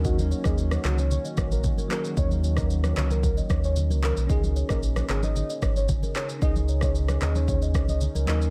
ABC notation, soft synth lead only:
X:1
M:4/4
L:1/16
Q:1/4=113
K:Dbmix
V:1 name="Soft synth lead"
G z2 A z2 G d d z2 B z2 B z | d z2 B z2 d B B z2 d z2 B z | A z2 B z2 A e e z2 d z2 d z | e z2 d z2 e d d z2 e z2 e z |]